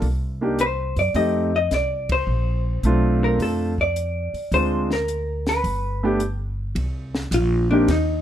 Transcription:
0.02 C2, open hi-hat
0.41 A#3 D4 D#4 G4
0.59 C5, closed hi-hat
0.96 F#2 D5, open hi-hat
1.14 F2 A3 C4 D#4 G4 D#5, open hi-hat
1.56 D#5
1.71 C2 D5, snare, closed hi-hat
2.09 C5, kick, ride
2.27 A#1
2.83 B1 A3 C4 D4 F4, closed hi-hat
3.24 A#4
3.39 F2 A4, open hi-hat
3.78 D5, kick
3.96 closed hi-hat
4.34 muted upright bass stroke, open hi-hat
4.52 D2 G#3 C4 D4 F4 C5, open hi-hat
4.91 A#4, snare
5.08 closed hi-hat
5.46 B4, snare, open hi-hat
5.64 G1, open hi-hat
6.03 A3 B3 D4 G4
6.20 closed hi-hat
6.75 C2, ride
7.15 snare
7.31 A#1 F4, hi-hat pedal, ride
7.71 A#3 C4 D4 D#4 G4
7.88 D#2 D#4, snare, ride

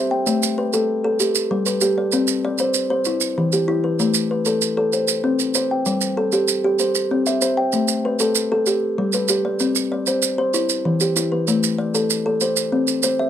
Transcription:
Already playing: C5 E5
0.11 G5
0.27 A3, maracas
0.43 maracas
0.58 B4
0.73 A4, maracas
1.04 A4
1.20 G4, maracas
1.35 maracas
1.51 G3
1.66 B4, maracas
1.81 G4, maracas
1.98 D5
2.12 C4, maracas
2.27 maracas
2.45 D5
2.58 C5, maracas
2.74 maracas
2.90 C5
3.05 E4, maracas
3.21 maracas
3.38 E3
3.52 G4, maracas
3.68 E4
3.84 B4
3.99 A3, maracas
4.14 maracas
4.31 B4
4.45 A4, maracas
4.62 maracas
4.77 A4
4.93 C5, maracas
5.08 maracas
5.24 C4
5.39 maracas
5.54 C5, maracas
5.71 G5
5.86 G3, maracas
6.01 maracas
6.17 A4
6.32 G4, maracas
6.48 maracas
6.64 G4
6.79 C5, maracas
6.95 maracas
7.11 C4
7.26 E5, maracas
7.42 C5, maracas
7.57 G5
7.72 A3, maracas
7.88 maracas
8.05 B4
8.19 A4, maracas
8.35 maracas
8.52 A4
8.66 G4, maracas
8.98 G3
9.13 B4, maracas
9.28 G4, maracas
9.45 D5
9.60 C4, maracas
9.75 maracas
9.92 D5
10.07 C5, maracas
10.22 maracas
10.38 C5
10.54 E4, maracas
10.69 maracas
10.85 E3
11.00 G4, maracas
11.16 E4, maracas
11.32 B4
11.48 A3, maracas
11.63 maracas
11.78 D5
11.94 A4, maracas
12.10 maracas
12.26 A4
12.41 C5, maracas
12.56 maracas
12.72 C4
12.88 maracas
13.03 C5, maracas
13.19 E5

